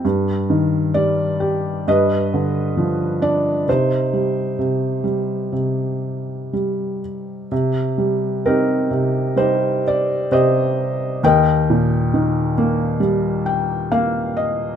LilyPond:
<<
  \new Staff \with { instrumentName = "Felt piano" } { \time 4/4 \key c \minor \tempo 4 = 66 << { r4 d''4 ees''4. d''8 | c''2.~ c''8 r8 | r4 bes'4 c''8 d''8 ees''4 | g''4. r4 g''8 f''8 ees''8 | } \\ { r2 b'2 | ees'2.~ ees'8 r8 | r4 <ees' g'>4 <ees' g'>4 <g' c''>4 | <bes' ees''>2 r2 | } >> }
  \new Staff \with { instrumentName = "Felt piano" } { \clef bass \time 4/4 \key c \minor g,8 ees8 g8 g'8 g,8 d8 f8 d'8 | c8 g8 c8 g8 c4 g4 | c8 g8 c'8 c8 g4 c4 | ees,8 bes,8 ees8 bes8 g4 bes4 | }
>>